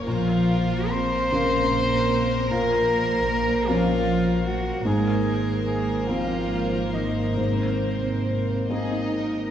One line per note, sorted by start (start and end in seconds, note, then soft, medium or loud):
0.04 4.82 A#1 medium
0.04 1.28 A#2 medium
0.04 0.87 F3 medium
0.04 4.82 A#3 medium
0.04 0.92 F4 loud
0.04 4.82 A#4 medium
0.04 4.83 C5 medium
0.04 0.92 F5 medium
0.90 2.47 C4 medium
0.90 2.50 C5 loud
0.90 2.49 C6 medium
1.32 2.46 C#3 medium
1.32 2.46 A#3 medium
1.32 2.47 A#4 soft
2.50 3.66 A#2 medium
2.50 3.67 A#3 medium
2.50 3.70 A#4 loud
2.50 3.69 A#5 medium
3.68 4.47 F3 medium
3.68 4.82 A#3 soft
3.68 4.83 C#4 medium
3.68 4.45 F4 medium
3.68 4.83 A#4 medium
3.68 4.49 F5 medium
4.46 4.86 F#3 medium
4.46 4.88 F#4 medium
4.46 4.85 F#5 medium
4.85 9.51 G#1 medium
4.85 6.05 G#2 medium
4.85 5.65 G#3 medium
4.85 9.51 A#3 medium
4.85 5.66 G#4 medium
4.85 8.57 A#4 medium
4.85 8.66 C5 medium
4.85 5.41 G#5 medium
5.66 6.08 G#3 medium
5.66 6.08 G#4 medium
5.66 6.09 G#5 medium
6.08 6.94 F3 medium
6.08 7.34 A#3 soft
6.08 7.34 C4 soft
6.08 6.95 F4 medium
6.08 7.34 A#4 soft
6.08 6.95 F5 medium
6.93 7.37 D#3 medium
6.93 7.38 D#4 medium
6.93 7.38 D#5 medium
7.37 8.65 G#2 medium
7.37 8.67 C3 soft
7.37 8.67 C4 medium
7.37 8.67 C5 medium
8.69 9.51 A#3 soft
8.69 9.51 C4 soft
8.69 9.51 D#4 medium
8.69 9.10 G#4 medium
8.69 9.51 A#4 soft
8.69 9.51 D#5 medium
9.13 9.51 A#4 soft